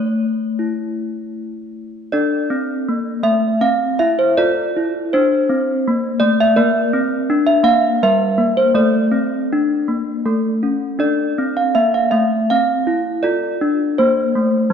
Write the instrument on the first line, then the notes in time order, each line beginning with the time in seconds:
handbells
Already playing: A3 C#5
0.59 E4
2.12 D4 A4 D5
2.50 C4
2.88 A#3
3.23 A3 E5
3.61 C4 F5
3.99 E4 E5
4.19 C5
4.37 F4 A4 D5
4.76 E4
5.13 D4 C5
5.49 C4
5.88 A#3
6.20 A3 D5
6.40 E5
6.56 A#3 A#4 D5
6.93 C4
7.30 D4
7.47 E5
7.63 A#3 F5
8.03 G3 A#4 E5
8.38 A#3
8.57 C5
8.75 A3 A4 D5
9.12 C4
9.53 D4
9.88 A#3
10.26 A3 A4
10.63 C#4
10.99 D4 A4 D5
11.38 C4
11.57 F5
11.75 A#3 E5
11.94 F5
12.11 A3 E5
12.50 C4 F5
12.87 E4
13.23 F4 A4 D5
13.61 D4
13.98 A#3 C5
14.35 A3
14.70 G3